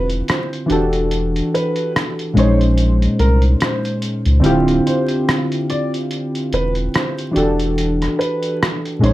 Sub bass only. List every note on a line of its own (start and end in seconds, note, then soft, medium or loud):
0.00 0.22 E1 medium
0.70 1.41 E1 loud
2.36 3.08 A#1 medium
3.19 3.55 C2 medium
4.26 4.41 C#2 medium
4.44 4.80 D1 loud
6.53 6.88 E1 medium
7.36 8.08 E1 medium
9.03 9.13 A#1 medium